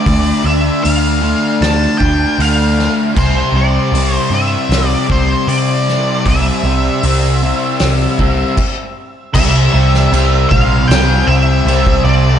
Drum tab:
CC |----------------|x---------------|------------x---|x---x---x---x---|
HH |o---o---o---o---|----o---o---o---|o---o---o-------|----------------|
SD |--------o-----o-|--------o-----o-|--------o-------|---o----o-------|
BD |o---------o-----|o---------o-----|o---------o-o---|o-----o------o--|